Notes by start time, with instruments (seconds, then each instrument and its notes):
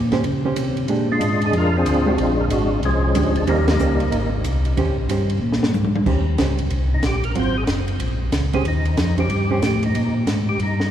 Already playing: tonewheel organ A#2
0.12 hollow-body jazz guitar D#3 C#4 G4 C5, snare, ride
0.24 tonewheel organ C#3, ride
0.45 hollow-body jazz guitar D#3 C#4 G4 C5
0.56 tonewheel organ C3, hi-hat pedal, ride
0.77 ride
0.88 tonewheel organ A#2, hollow-body jazz guitar G#3 D4 G4, ride
1.12 tonewheel organ G#3 D4 F4
1.21 tonewheel organ G#2, hi-hat pedal, ride
1.42 ride
1.46 tonewheel organ G#4
1.53 tonewheel organ F2 D4 F4, ride
1.58 tonewheel organ A#4
1.77 tonewheel organ C4 D4 G#4
1.86 tonewheel organ D2, hi-hat pedal, ride
2.06 hollow-body jazz guitar G#3 D4 G4, tonewheel organ F#4
2.18 tonewheel organ A#1 G#3 D4 F4, ride
2.40 tonewheel organ A#4
2.50 tonewheel organ G#1 F#4, hi-hat pedal, ride
2.74 tonewheel organ F4
2.83 tonewheel organ C2 F3 G#3 C#4, ride
3.15 tonewheel organ D2, hollow-body jazz guitar G#3 D4 G4, hi-hat pedal, ride
3.36 tonewheel organ D4, ride
3.47 tonewheel organ D#2 G3 A#3 D#4, hollow-body jazz guitar D#3 C#4 G4 C5, ride
3.68 tonewheel organ G3 A#3 D#4, snare, ride
3.79 tonewheel organ C#2, hollow-body jazz guitar D#3 C#4 G4 C5, hi-hat pedal
4.00 ride
4.12 tonewheel organ G#1, ride
4.44 tonewheel organ C2, hi-hat pedal, ride
4.65 ride
4.77 tonewheel organ D#2, hollow-body jazz guitar D#3 C#4 G4 C5, ride
4.88 tonewheel organ C#2
4.98 tonewheel organ A#1
5.09 tonewheel organ G2, hollow-body jazz guitar D#3 C#4 G4 C5, hi-hat pedal, ride
5.30 ride
5.42 tonewheel organ A#2
5.52 snare
5.63 snare
5.74 tonewheel organ G#2, hi-hat pedal, high tom
5.85 high tom
5.96 high tom
6.06 tonewheel organ D#2, hollow-body jazz guitar D#3 C#4 G4 C5, kick, crash
6.38 tonewheel organ C#2, hollow-body jazz guitar D#3 C#4 G4 C5, snare, hi-hat pedal, ride
6.58 ride
6.70 tonewheel organ C2, ride
6.94 tonewheel organ D#4
7.03 tonewheel organ A#1, snare, hi-hat pedal, ride
7.07 tonewheel organ G4
7.24 tonewheel organ A#4, ride
7.35 tonewheel organ G#1 C5, hollow-body jazz guitar F#3 C4 F4, ride
7.58 tonewheel organ G#4
7.67 tonewheel organ F#1, snare, hi-hat pedal, ride
7.88 ride
8.00 tonewheel organ A#1, ride
8.32 tonewheel organ C#2, snare, hi-hat pedal, ride
8.53 hollow-body jazz guitar D#3 C#4 G4 C5, tonewheel organ G#4, ride
8.65 tonewheel organ D#2 D#4, ride
8.85 ride
8.97 tonewheel organ F2, snare, hi-hat pedal, ride
9.18 hollow-body jazz guitar D#3 C#4 G4 C5, tonewheel organ G4, ride
9.30 tonewheel organ G2, ride
9.50 hollow-body jazz guitar D#3 C#4 G4 C5
9.62 tonewheel organ A2 G4, snare, hi-hat pedal, ride
9.83 tonewheel organ D#4, ride
9.95 tonewheel organ A#2, ride
10.27 tonewheel organ G#2, snare, hi-hat pedal, ride
10.49 tonewheel organ G4
10.59 tonewheel organ G2 D#4, ride
10.80 snare